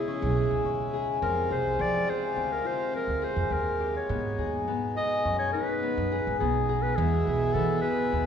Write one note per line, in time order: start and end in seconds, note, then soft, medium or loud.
0.00 1.19 C#3 medium
0.00 1.19 G#3 medium
0.00 0.86 B3 medium
0.00 1.19 E4 medium
0.00 2.40 E4 medium
0.00 0.36 G#4 medium
0.00 0.94 G#4 medium
0.08 0.65 C#4 medium
0.22 0.46 B1 loud
0.36 0.93 G#4 medium
0.51 0.62 C#2 medium
0.64 1.12 D#2 medium
0.64 1.28 C#4 medium
0.93 1.50 G#4 medium
1.22 1.46 F2 loud
1.22 4.07 C3 medium
1.22 6.95 G#3 medium
1.22 1.79 C4 medium
1.22 4.07 F4 medium
1.22 1.49 A#4 medium
1.50 1.81 C2 medium
1.50 2.07 G#4 medium
1.50 1.83 C5 medium
1.79 2.03 F3 medium
1.79 2.36 C4 medium
1.79 2.11 D5 medium
2.07 3.21 G#4 medium
2.07 2.54 C5 medium
2.36 2.60 D2 medium
2.36 2.93 C4 medium
2.52 2.68 A#4 medium
2.65 5.17 F4 medium
2.65 2.94 C5 medium
2.93 3.50 C4 medium
2.93 3.26 A#4 medium
3.07 3.32 D2 medium
3.22 3.86 G#4 medium
3.22 3.55 C5 medium
3.36 3.48 F2 medium
3.50 3.99 D#2 medium
3.50 4.15 C4 medium
3.50 3.96 A#4 medium
3.80 4.44 G4 medium
3.97 4.64 C#5 medium
4.08 4.33 G#2 loud
4.08 6.94 B2 medium
4.08 4.67 B3 medium
4.08 6.94 D#4 medium
4.38 4.67 D#2 medium
4.38 4.96 G#4 medium
4.67 4.91 G#2 medium
4.67 5.82 B3 medium
4.97 6.11 G#4 medium
4.97 5.37 D#5 loud
5.25 5.49 F#2 medium
5.25 8.15 C#4 medium
5.39 5.52 C#5 medium
5.53 8.25 D#4 medium
5.53 6.36 B4 medium
5.83 6.40 B3 medium
5.97 6.21 F#2 medium
6.12 6.68 G#4 medium
6.27 6.39 G#2 medium
6.39 6.88 B1 medium
6.39 6.97 B3 medium
6.39 6.84 G#4 medium
6.69 7.27 G#4 medium
6.82 6.98 B4 medium
6.96 7.22 E2 loud
6.96 8.26 B2 medium
6.96 7.55 B3 medium
6.96 8.26 E4 medium
6.96 7.55 G#4 medium
7.27 7.56 B1 medium
7.27 7.83 G#4 medium
7.54 7.78 E3 medium
7.54 8.12 B3 medium
7.54 7.81 A4 medium
7.82 8.26 G#4 medium
7.82 8.26 B4 loud
8.12 8.24 D#2 medium
8.12 8.26 B3 medium